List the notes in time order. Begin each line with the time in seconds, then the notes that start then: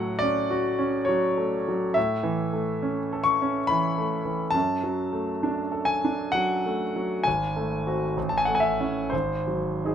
Already playing: A2 F#3 A3 F#5
0.19 C#4 D5
0.51 F#4
0.79 C#4
1.05 F#3 C#5
1.37 A3
1.68 F#3
1.94 A2 E5
2.23 E3
2.53 A3
2.82 C#4
3.13 A4
3.24 C#6
3.42 C#4
3.67 E3 B5
3.98 A3
4.25 E3
4.50 F#2 A5
4.84 F#3
5.12 A3
5.43 D4
5.72 A4
5.85 G#5
6.05 D4
6.32 F#3 F#5
6.66 A3
6.96 F#3
7.24 G#1 G#5
7.56 A3
7.87 C4 F#4
8.17 A1
8.29 A5
8.38 G#5
8.45 A3 F#5
8.55 G#5
8.60 E5
8.80 C#4 E4
9.10 G#1 C5
9.47 F#3
9.85 D#4 G#4